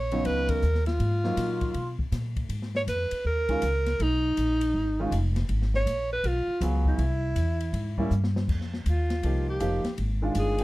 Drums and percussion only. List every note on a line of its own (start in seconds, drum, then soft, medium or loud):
0.11 ride soft
0.25 ride medium
0.49 kick medium
0.49 ride medium
0.62 hi-hat pedal medium
0.75 snare soft
0.86 snare soft
0.86 ride soft
1.00 ride soft
1.24 snare soft
1.37 snare soft
1.37 hi-hat pedal soft
1.37 ride medium
1.61 kick soft
1.61 ride soft
1.74 ride soft
1.99 kick medium
2.12 snare soft
2.12 hi-hat pedal medium
2.12 ride medium
2.36 kick soft
2.36 ride soft
2.49 ride medium
2.62 snare soft
2.75 snare soft
2.88 hi-hat pedal medium
2.88 ride medium
3.11 ride medium
3.49 kick medium
3.49 ride soft
3.62 hi-hat pedal medium
3.62 ride medium
3.86 snare soft
3.86 ride soft
4.00 ride medium
4.37 hi-hat pedal medium
4.37 ride medium
4.61 ride medium
5.12 hi-hat pedal medium
5.12 ride medium
5.36 snare soft
5.36 ride soft
5.49 ride soft
5.62 snare soft
5.74 snare soft
5.87 hi-hat pedal soft
5.87 ride medium
6.24 ride medium
6.61 hi-hat pedal medium
6.61 ride medium
6.85 kick soft
6.99 ride medium
7.36 hi-hat pedal soft
7.36 ride medium
7.60 ride soft
7.74 ride medium
7.98 kick soft
8.11 hi-hat pedal soft
8.24 snare medium
8.36 snare medium
8.48 kick medium
8.48 crash medium
8.61 snare soft
8.74 snare soft
8.86 hi-hat pedal soft
8.86 ride medium
9.10 snare soft
9.10 ride soft
9.23 ride medium
9.60 hi-hat pedal medium
9.60 ride medium
9.84 snare soft
9.84 ride soft
9.98 ride soft
10.35 hi-hat pedal medium
10.35 ride medium
10.58 ride medium